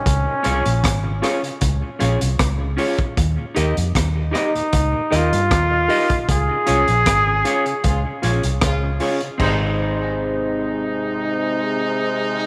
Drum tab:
CC |----------------|----------------|----------------|x---------------|
HH |x-xxx-xxx-xxx-ox|x-xxx-xxx-xxx-ox|x-xxx-xxx-xxx-ox|----------------|
SD |----r-r-----r---|----r-r-----r---|----r-------r---|----------------|
BD |o---o---o---o--o|o---o---o---o--o|o---o---o---o---|o---------------|